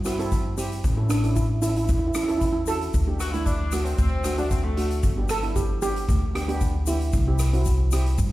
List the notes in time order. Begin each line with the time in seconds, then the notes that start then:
Already playing: G2
0.05 C4 E4 F#4, cross-stick, closed hi-hat, shaker
0.19 C4 E4 A4, closed hi-hat
0.31 kick, closed hi-hat, shaker
0.57 C4 E4 G4, closed hi-hat, shaker
0.72 closed hi-hat
0.84 A1, kick, closed hi-hat, shaker
0.97 C#4 E4 A4
1.09 D4, cross-stick, closed hi-hat, shaker
1.24 C#4 E4 A4, closed hi-hat
1.36 E4, kick, closed hi-hat, shaker
1.62 C#4 E4 A4, closed hi-hat, shaker
1.70 E4
1.76 E4, closed hi-hat
1.85 E4, closed hi-hat, shaker
1.89 E2 E4, kick
1.99 E4
2.07 E4
2.14 C#4 E4 A4, cross-stick, closed hi-hat, shaker
2.24 E4
2.28 C#4 E4 A4, closed hi-hat
2.38 E4, kick, closed hi-hat, shaker
2.45 E4
2.53 E4
2.66 C#4 E4 F#4 A4, closed hi-hat, shaker
2.81 closed hi-hat
2.94 D2, kick, closed hi-hat, shaker
3.07 A3 D4 G4
3.20 F#4, cross-stick, closed hi-hat, shaker
3.32 A3 D4 E4, closed hi-hat, shaker
3.46 D4, kick, closed hi-hat, shaker
3.72 A3 D4 F#4, cross-stick, closed hi-hat, shaker
3.85 C4, closed hi-hat, shaker
3.98 D2 C4, kick, closed hi-hat, shaker
4.24 A3 D4 F#4, cross-stick, closed hi-hat, shaker
4.38 A3 D4 F#4, closed hi-hat, shaker
4.51 C4, kick, closed hi-hat, shaker
4.64 A3
4.77 A3 D4 F#4, closed hi-hat
4.91 closed hi-hat, shaker
5.03 G1, kick, closed hi-hat, shaker
5.17 B3 D4 G4
5.29 A4, cross-stick, closed hi-hat, shaker
5.43 B3 D4 E4, closed hi-hat
5.56 G4, kick, closed hi-hat, shaker
5.82 B3 D4 G4, closed hi-hat, shaker
5.96 closed hi-hat
6.09 D2, kick, closed hi-hat, shaker
6.35 B3 D4 G4, cross-stick, closed hi-hat
6.48 B3 D4 G4, closed hi-hat
6.61 kick, closed hi-hat, shaker
6.87 B3 D4 E4 G4, closed hi-hat, shaker
7.00 closed hi-hat
7.13 C2, kick, closed hi-hat, shaker
7.27 C4 E4 G4
7.39 cross-stick, closed hi-hat, shaker
7.53 C4 E4 F#4, closed hi-hat
7.65 kick, closed hi-hat, shaker
7.92 C4 E4 G4, cross-stick, closed hi-hat, shaker
8.06 closed hi-hat
8.18 G2, kick, closed hi-hat, shaker